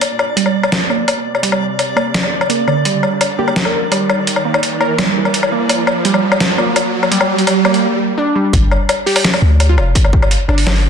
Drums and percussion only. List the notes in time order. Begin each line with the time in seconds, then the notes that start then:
0.01 closed hi-hat, low woodblock
0.19 low woodblock
0.37 closed hi-hat
0.46 low woodblock
0.63 low woodblock
0.72 snare, closed hi-hat
0.90 low woodblock
1.08 closed hi-hat, low woodblock
1.35 low woodblock
1.43 closed hi-hat
1.52 low woodblock
1.79 closed hi-hat, low woodblock
1.97 low woodblock
2.14 snare, closed hi-hat
2.23 low woodblock
2.41 low woodblock
2.50 closed hi-hat
2.68 low woodblock
2.85 closed hi-hat
3.03 low woodblock
3.21 closed hi-hat, low woodblock
3.48 low woodblock
3.56 snare, closed hi-hat
3.65 low woodblock
3.92 closed hi-hat, low woodblock
4.09 low woodblock
4.27 closed hi-hat
4.36 low woodblock
4.54 low woodblock
4.63 closed hi-hat
4.81 low woodblock
4.98 snare, closed hi-hat, low woodblock
5.25 low woodblock
5.34 closed hi-hat
5.43 low woodblock
5.69 closed hi-hat, low woodblock
5.87 low woodblock
6.05 closed hi-hat
6.14 low woodblock
6.32 low woodblock
6.40 snare, closed hi-hat
6.58 low woodblock
6.76 closed hi-hat, low woodblock
7.03 low woodblock
7.12 closed hi-hat
7.21 low woodblock
7.38 closed hi-hat
7.47 closed hi-hat, low woodblock
7.65 low woodblock
7.74 closed hi-hat
8.53 kick, closed hi-hat
8.71 low woodblock
8.89 closed hi-hat, low woodblock
9.07 open hi-hat
9.16 open hi-hat, low woodblock
9.24 snare, closed hi-hat
9.34 open hi-hat, low woodblock
9.60 closed hi-hat, low woodblock
9.78 low woodblock
9.95 kick, closed hi-hat
10.05 low woodblock
10.13 kick
10.22 low woodblock
10.31 closed hi-hat
10.49 low woodblock
10.58 open hi-hat
10.67 snare, closed hi-hat, low woodblock
10.76 open hi-hat